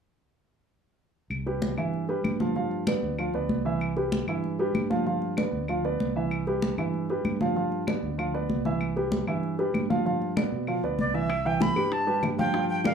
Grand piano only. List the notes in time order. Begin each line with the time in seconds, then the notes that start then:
1.46 G3 G4 B4
1.78 E3 E4 E5
2.09 G3 G4 B4
2.40 F3 F4 F5
2.56 F3 F4 F5
2.88 B3 B4 D5
3.19 F3 F4 F5
3.34 B3 B4 D5
3.65 E3 E4 E5
3.97 G3 G4 B4
4.28 E3 E4 E5
4.59 G3 G4 B4
4.90 F3 F4 F5
5.06 F3 F4 F5
5.37 B3 B4 D5
5.69 F3 F4 F5
5.84 B3 B4 D5
6.16 E3 E4 E5
6.47 G3 G4 B4
6.78 E3 E4 E5
7.10 G3 G4 B4
7.41 F3 F4 F5
7.56 F3 F4 F5
7.87 B3 B4 D5
8.18 F3 F4 F5
8.34 B3 B4 D5
8.65 E3 E4 E5
8.96 G3 G4 B4
9.27 E3 E4 E5
9.59 G3 G4 B4
9.90 F3 F4 F5
10.06 F3 F4 F5
10.37 B3 B4 D5
10.68 F3 F4 F5
10.84 B3 B4 D5
11.14 E3 E4 E5
11.45 E3 E4 E5
11.76 G3 G4 B4
12.07 G3 G4 B4
12.38 F3 F4 F5
12.54 F3 F4 F5
12.85 A#3 A#4 D5